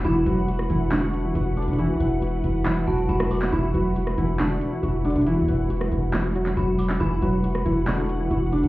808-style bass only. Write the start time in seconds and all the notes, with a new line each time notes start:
0.05 E1
0.26 E1
0.70 E1
1.35 E1
1.68 E1
1.89 B1
2.00 E1
2.44 E1
2.87 E1
3.09 E1
3.52 E1
3.74 E1
4.18 E1
4.83 E1
5.16 E1
5.37 E2
5.48 E1
5.92 E1
6.57 E1
7.00 E1
7.22 E1
7.66 E1
8.31 E1
8.63 E1